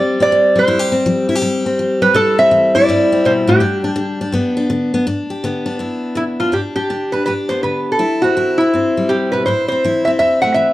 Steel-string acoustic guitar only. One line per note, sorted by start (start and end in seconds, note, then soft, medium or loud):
0.00 0.30 C3 medium
0.00 0.55 G3 medium
0.00 0.20 C4 medium
0.00 0.68 G4 medium
0.20 0.92 C4 medium
0.32 0.66 F3 medium
0.56 1.42 G3 medium
0.68 1.02 F2 medium
0.68 0.79 E4 medium
0.79 1.28 G4 medium
0.92 1.65 C4 medium
1.06 1.40 F3 medium
1.29 1.35 E4 medium
1.35 2.15 G4 medium
1.42 1.76 C3 medium
1.42 2.01 G3 soft
1.66 2.14 C4 medium
1.79 2.13 F3 medium
2.02 2.89 G3 medium
2.14 2.49 C3 medium
2.14 2.75 E4 medium
2.39 3.11 C4 medium
2.51 2.85 E3 medium
2.76 3.61 E4 medium
2.89 3.22 G2 medium
2.89 4.33 G3 medium
3.12 3.60 C4 medium
3.25 3.47 B2 medium
3.47 3.61 A2 medium
3.60 3.94 G2 medium
3.60 3.83 D4 medium
3.84 4.20 D4 medium
3.96 4.30 D3 medium
4.21 4.56 D4 medium
4.32 4.67 G2 medium
4.32 4.93 B3 medium
4.57 5.05 D4 medium
4.70 5.04 D3 medium
4.94 5.05 B3 medium
5.07 5.41 G2 medium
5.07 5.65 D4 medium
5.30 5.80 G4 medium
5.44 5.77 D3 medium
5.44 6.52 B3 medium
5.66 6.39 D4 medium
5.79 6.13 G2 medium
5.79 6.53 E4 medium
6.15 6.50 D3 medium
6.40 6.52 D4 medium
6.52 6.86 G2 medium
6.52 6.75 D4 medium
6.76 6.89 D4 soft
6.90 7.24 D3 medium
6.90 7.12 D4 medium
7.13 7.98 D4 medium
7.27 7.60 G2 soft
7.27 7.98 G4 medium
7.50 7.98 B3 soft
7.64 7.97 D3 soft
7.99 8.33 C3 medium
7.99 8.37 E4 medium
8.24 8.60 C4 medium
8.37 8.70 E3 medium
8.37 9.47 E4 medium
8.60 8.74 C4 medium
8.74 9.07 G2 medium
8.74 9.45 C4 soft
8.97 9.47 G3 medium
9.10 9.33 C3 medium
9.33 9.46 B2 medium
9.47 9.80 A2 medium
9.47 9.84 E4 medium
9.72 10.06 C4 soft
9.84 10.17 E3 medium
9.84 10.18 E4 medium
10.07 10.73 C4 medium
10.19 10.53 E2 medium
10.19 10.73 E4 medium
10.44 10.73 A3 medium
10.56 10.73 E3 medium